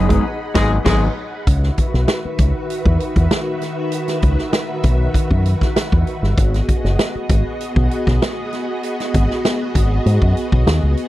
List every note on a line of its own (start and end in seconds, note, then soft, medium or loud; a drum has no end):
0.00 0.17 F#1 medium
0.00 0.10 D#4 medium
0.00 1.43 G#4 medium
0.00 1.43 D#5 medium
0.00 1.43 F#5 medium
0.00 1.43 B5 loud
0.09 0.25 F#3 soft
0.09 0.22 G#3 medium
0.09 0.24 B3 medium
0.09 0.24 D#4 medium
0.09 0.24 G#4 medium
0.09 kick medium
0.09 closed hi-hat medium
0.55 0.76 G#1 medium
0.55 0.76 F#3 loud
0.55 0.71 G#3 loud
0.55 0.76 B3 loud
0.55 0.77 D#4 loud
0.55 0.71 G#4 loud
0.55 0.77 G#4 loud
0.55 kick loud
0.55 snare medium
0.55 crash medium
0.85 1.07 G#1 loud
0.85 1.06 F#3 loud
0.85 1.01 G#3 medium
0.85 1.06 B3 loud
0.85 1.07 D#4 loud
0.85 1.01 G#4 medium
0.85 1.07 G#4 medium
0.85 kick loud
0.85 snare loud
0.85 crash medium
1.47 1.69 C#2 medium
1.47 6.34 D#3 medium
1.47 6.34 F#4 medium
1.47 6.34 B4 medium
1.47 6.34 E5 medium
1.47 kick loud
1.47 closed hi-hat medium
1.63 snare soft
1.78 kick medium
1.78 closed hi-hat medium
1.94 2.04 B1 medium
1.94 snare soft
2.08 snare medium
2.08 closed hi-hat medium
2.25 muted fingered electric bass stroke soft
2.38 2.51 C#2 medium
2.38 kick loud
2.38 closed hi-hat medium
2.70 closed hi-hat medium
2.86 2.96 E2 medium
2.86 kick medium
3.00 closed hi-hat medium
3.16 3.27 E2 medium
3.16 kick medium
3.16 closed hi-hat soft
3.31 snare loud
3.31 closed hi-hat medium
3.62 snare soft
3.62 closed hi-hat medium
3.92 closed hi-hat medium
4.08 snare soft
4.08 closed hi-hat medium
4.22 4.35 C#2 medium
4.22 kick medium
4.22 closed hi-hat medium
4.38 snare soft
4.53 snare medium
4.53 closed hi-hat medium
4.83 5.06 B1 medium
4.83 kick medium
4.83 closed hi-hat medium
5.14 muted fingered electric bass stroke soft
5.14 kick medium
5.14 closed hi-hat medium
5.31 5.53 F#2 medium
5.31 kick medium
5.46 closed hi-hat medium
5.61 kick medium
5.61 snare soft
5.76 muted fingered electric bass stroke soft
5.76 snare loud
5.76 closed hi-hat medium
5.92 6.03 E2 medium
5.92 kick loud
6.07 closed hi-hat medium
6.22 6.33 G1 medium
6.22 snare soft
6.37 6.60 G#1 medium
6.37 11.08 B3 medium
6.37 11.08 F#4 medium
6.37 11.08 G#4 medium
6.37 11.08 D#5 medium
6.37 kick loud
6.37 closed hi-hat medium
6.54 snare soft
6.54 closed hi-hat soft
6.69 kick medium
6.69 closed hi-hat medium
6.84 6.95 F#1 medium
6.84 snare soft
6.99 snare loud
6.99 closed hi-hat medium
7.15 muted fingered electric bass stroke soft
7.29 7.42 G#1 medium
7.29 kick loud
7.29 closed hi-hat medium
7.61 closed hi-hat medium
7.76 7.87 B1 medium
7.76 kick medium
7.91 closed hi-hat medium
8.07 8.18 B1 medium
8.07 kick medium
8.07 snare soft
8.22 snare loud
8.22 closed hi-hat medium
8.53 snare soft
8.53 closed hi-hat medium
8.83 closed hi-hat medium
9.00 snare soft
9.00 closed hi-hat soft
9.14 9.26 G#1 loud
9.14 kick medium
9.14 closed hi-hat medium
9.31 snare soft
9.45 snare medium
9.45 closed hi-hat medium
9.75 9.98 G#1 medium
9.75 kick medium
9.75 closed hi-hat loud
10.06 10.18 G#2 loud
10.06 closed hi-hat medium
10.22 10.32 F#2 medium
10.22 kick medium
10.37 closed hi-hat medium
10.52 10.63 B1 medium
10.52 kick medium
10.66 10.79 D#2 medium
10.66 snare loud
10.66 closed hi-hat medium
10.83 10.94 C#2 medium
10.97 closed hi-hat medium